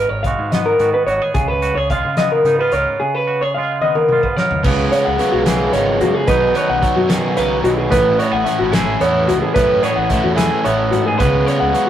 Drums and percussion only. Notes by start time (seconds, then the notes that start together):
0.24 kick, closed hi-hat
0.52 snare, closed hi-hat
0.79 closed hi-hat
1.08 closed hi-hat
1.34 kick, closed hi-hat
1.62 closed hi-hat
1.90 kick, closed hi-hat
2.17 snare, closed hi-hat
2.45 closed hi-hat
2.72 closed hi-hat
3.82 high tom
3.95 high tom
4.09 mid tom
4.23 kick
4.37 snare
4.51 floor tom
4.64 kick, crash
4.93 closed hi-hat
5.19 closed hi-hat
5.46 snare, closed hi-hat
5.73 closed hi-hat
6.01 closed hi-hat
6.27 kick, closed hi-hat
6.55 closed hi-hat
6.83 kick, closed hi-hat
7.10 snare, closed hi-hat
7.37 closed hi-hat
7.65 closed hi-hat
7.92 kick, closed hi-hat
8.20 closed hi-hat
8.46 closed hi-hat
8.73 snare, closed hi-hat
9.01 closed hi-hat
9.29 closed hi-hat
9.56 kick, closed hi-hat
9.83 closed hi-hat
10.10 kick, closed hi-hat
10.38 snare, closed hi-hat
10.65 closed hi-hat
10.93 closed hi-hat
11.20 kick, closed hi-hat
11.48 closed hi-hat
11.75 closed hi-hat